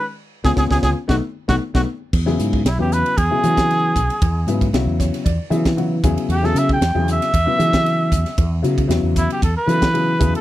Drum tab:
CC |----------------|x---------------|----------------|----------------|
RD |----------------|--x-x-xxx-xxx-xx|x-xxx-xxx-xxx-xx|x-x-x-xxx-xxx-xx|
HH |----------------|--p---p---p---p-|--p---p---p---p-|--p---p---p---p-|
SD |---oooo-o--o-o--|-o--o-o----oo---|----o-oo---o----|-o--o-oo---oo--o|
BD |---oooo-o--o-o--|o--o----o--o--o-|o--o--o-o--o--o-|---o----o--o--o-|

CC |----------------|
RD |x-xxx-xxx-xxx-xx|
HH |--p---p---p---p-|
SD |----o-o----o----|
BD |o--o--o-o--o--o-|